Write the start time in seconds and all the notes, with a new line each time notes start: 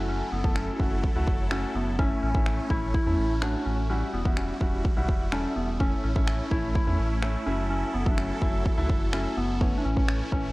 Already playing: F#1 F#3 A3 E4 F#4 A4, downlifter
0.09 C#4
0.32 F#1 B3
0.44 A3 E4 A4, kick
0.56 C#4, finger snap
0.80 F#1 A3 E4 F#4, kick
1.04 kick
1.15 C#2 A3 E4 F#4
1.27 F#1, kick
1.51 A3 C#4 E4 F#4, finger snap
1.75 F#1 B3
1.99 A3 C#4 E4, kick
2.23 A1 C#4
2.35 A3 C#4 E4, kick
2.46 finger snap
2.70 A1 A3 C#4 E4, kick
2.94 E4, kick
3.06 E2 A3 C#4 E4
3.18 A1
3.42 A3 C#4 D4 F#4, finger snap
3.66 A1 C#4
3.89 G3 C#4 E4 F#4
4.13 E1 B3
4.25 G3 E4 F#4, kick
4.37 C#4, finger snap
4.61 E1 G3 E4 F#4, kick
4.85 kick
4.97 B1 G3 E4 F#4
5.09 E1, kick
5.32 G3 C#4 E4 A4, finger snap
5.56 E1 B3
5.80 A3 C#4 E4, kick
6.04 A1 C#4
6.15 A3 C#4 E4, kick
6.27 finger snap
6.51 A1 A3 C#4 E4, kick
6.75 E4, kick
6.87 E2 A3 C#4 E4
6.99 A1
7.23 A3 C#4 E4, finger snap
7.46 F#1 F#3 A3 C#4 E4 A4
7.70 C#4
7.94 F#1 B3
8.06 F#3 A3 E4, kick
8.11 D4
8.18 C#4, finger snap
8.42 F#1 F#3 A3 E4, kick
8.66 kick
8.77 C#2 F#3 A3 E4
8.90 F#1, kick
9.13 F#3 A3 C#4 E4, finger snap
9.37 F#1 B3
9.61 E3 A3 C#4, kick
9.78 D4
9.85 A1 C#4
9.96 E3 A3 C#4, kick
10.08 finger snap
10.32 A1 E3 A3 C#4, kick